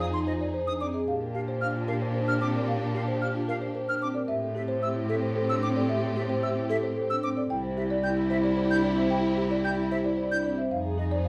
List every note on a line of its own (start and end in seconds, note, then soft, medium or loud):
0.00 0.93 F2 medium
0.00 0.90 D#4 medium
0.00 0.17 F4 medium
0.00 0.90 G#4 medium
0.00 0.17 F5 medium
0.00 0.06 D#6 medium
0.10 0.29 D#4 medium
0.10 0.31 D#4 medium
0.10 0.19 C6 medium
0.27 0.44 F4 medium
0.27 0.44 C5 medium
0.27 0.33 D#5 medium
0.38 0.57 D#4 soft
0.38 0.58 D5 medium
0.54 0.71 C5 medium
0.66 0.84 D4 medium
0.66 0.86 D#4 soft
0.66 0.73 D#6 medium
0.81 0.98 C4 medium
0.81 0.98 D5 medium
0.81 0.87 D6 medium
0.94 1.11 G#4 medium
0.94 1.11 D#5 medium
1.07 4.14 A#2 medium
1.07 4.11 D4 medium
1.07 1.27 D4 soft
1.07 4.11 G4 medium
1.07 1.25 G4 medium
1.07 1.25 F5 medium
1.21 1.38 A#4 medium
1.34 1.55 D4 soft
1.34 1.52 G4 medium
1.34 1.40 F5 medium
1.48 1.65 C5 medium
1.61 1.83 D4 medium
1.61 1.78 G4 medium
1.61 1.79 F5 medium
1.61 1.67 F6 medium
1.74 1.92 F4 medium
1.88 2.11 D4 medium
1.88 2.05 G4 medium
1.88 2.05 A#4 medium
1.88 1.94 F5 medium
2.01 2.18 C5 medium
2.14 2.32 A#4 medium
2.14 2.32 C5 medium
2.19 2.39 D4 medium
2.28 2.45 D4 medium
2.28 2.34 F6 medium
2.41 2.58 C4 medium
2.41 2.58 C5 medium
2.41 2.47 D6 medium
2.47 2.66 D4 medium
2.55 2.72 A#4 medium
2.55 2.72 D5 medium
2.67 2.85 G4 medium
2.67 2.85 F5 medium
2.75 2.95 D4 medium
2.82 2.99 A#4 medium
2.94 3.12 G4 medium
2.94 3.01 F5 medium
3.03 3.23 D4 medium
3.08 3.25 C5 medium
3.21 3.39 G4 medium
3.21 3.39 F5 medium
3.21 3.28 F6 medium
3.32 3.51 D4 medium
3.32 3.52 F4 medium
3.48 3.66 G4 medium
3.48 3.66 A#4 medium
3.48 3.55 F5 medium
3.59 3.79 D4 soft
3.59 3.79 C5 medium
3.75 3.92 A#4 medium
3.75 3.92 C5 medium
3.88 4.07 D4 soft
3.88 4.06 D4 medium
3.88 3.95 F6 medium
4.01 4.19 C4 medium
4.01 4.19 C5 medium
4.01 4.08 D6 medium
4.14 4.32 A#4 medium
4.14 4.32 D5 medium
4.28 7.35 A2 medium
4.28 7.33 C4 medium
4.28 4.48 C4 soft
4.28 4.46 G4 medium
4.28 7.32 G4 medium
4.28 4.46 E5 medium
4.42 4.59 A4 medium
4.55 4.76 C4 medium
4.55 4.73 G4 medium
4.55 4.62 E5 medium
4.68 4.86 C5 medium
4.82 5.04 C4 medium
4.82 4.99 G4 medium
4.82 4.99 E5 medium
4.82 4.88 E6 medium
4.95 5.13 E4 medium
5.09 5.32 C4 medium
5.09 5.26 G4 medium
5.09 5.26 A4 medium
5.09 5.15 E5 medium
5.23 5.40 C5 medium
5.36 5.53 A4 medium
5.36 5.53 C5 medium
5.41 5.60 C4 medium
5.49 5.66 D4 medium
5.49 5.55 E6 medium
5.62 5.80 C4 medium
5.62 5.80 C5 medium
5.62 5.69 D6 medium
5.69 5.88 C4 medium
5.76 5.93 A4 medium
5.76 5.93 D5 medium
5.89 6.07 G4 medium
5.89 6.07 E5 medium
5.97 6.16 C4 medium
6.03 6.20 A4 medium
6.16 6.33 G4 medium
6.16 6.22 E5 medium
6.25 6.44 C4 medium
6.29 6.47 C5 medium
6.43 6.60 G4 medium
6.43 6.60 E5 medium
6.43 6.49 E6 medium
6.53 6.72 C4 medium
6.53 6.74 E4 medium
6.70 6.87 G4 medium
6.70 6.87 A4 medium
6.70 6.76 E5 medium
6.81 7.01 C4 medium
6.81 7.00 C5 medium
6.96 7.14 A4 medium
6.96 7.14 C5 medium
7.09 7.28 C4 soft
7.09 7.27 D4 medium
7.09 7.16 E6 medium
7.23 7.41 C4 medium
7.23 7.41 C5 medium
7.23 7.29 D6 medium
7.36 7.54 A4 medium
7.36 7.54 D5 medium
7.50 10.57 C2 medium
7.50 10.54 E4 medium
7.50 7.70 E4 soft
7.50 10.54 G4 medium
7.50 7.67 G5 loud
7.63 7.81 C5 medium
7.77 7.98 E4 medium
7.77 7.94 G4 medium
7.77 7.83 E5 medium
7.90 8.07 D5 medium
7.90 8.08 D5 medium
8.03 8.25 E4 medium
8.03 8.21 G4 medium
8.03 8.21 G5 medium
8.03 8.10 G6 medium
8.17 8.34 E4 loud
8.30 8.48 G4 medium
8.30 8.48 C5 medium
8.30 8.37 E5 medium
8.34 8.54 E4 medium
8.43 8.61 D5 medium
8.57 8.74 C5 medium
8.57 8.74 D5 medium
8.61 8.81 E4 medium
8.71 8.88 D4 medium
8.71 8.77 G6 medium
8.84 9.01 C4 medium
8.84 9.01 D5 medium
8.90 9.10 E4 medium
8.97 9.15 C5 medium
8.97 9.15 E5 medium
9.10 9.28 G5 medium
9.18 9.38 E4 medium
9.24 9.42 C5 medium
9.37 9.55 G4 medium
9.37 9.44 E5 medium
9.46 9.66 E4 medium
9.51 9.68 D5 medium
9.64 9.82 G4 medium
9.64 9.82 G5 medium
9.64 9.70 G6 medium
9.75 9.94 E4 medium
9.75 9.95 E4 medium
9.91 10.09 G4 medium
9.91 10.09 C5 medium
9.91 9.97 E5 medium
10.02 10.22 E4 medium
10.02 10.22 D5 medium
10.17 10.35 C5 medium
10.17 10.35 D5 medium
10.31 10.49 D4 medium
10.31 10.50 E4 soft
10.31 10.37 G6 medium
10.45 10.62 C4 medium
10.45 10.62 D5 medium
10.58 10.75 C5 medium
10.58 10.75 E5 medium
10.71 11.28 F2 medium
10.71 11.28 D#4 medium
10.71 10.91 D#4 soft
10.71 11.28 G#4 medium
10.71 10.89 F5 medium
10.85 11.02 G#4 medium
10.98 11.19 D#4 soft
10.98 11.15 G#4 medium
10.98 11.04 D#5 medium
11.11 11.28 C5 medium
11.11 11.28 D5 medium
11.25 11.28 F4 medium
11.25 11.28 F5 medium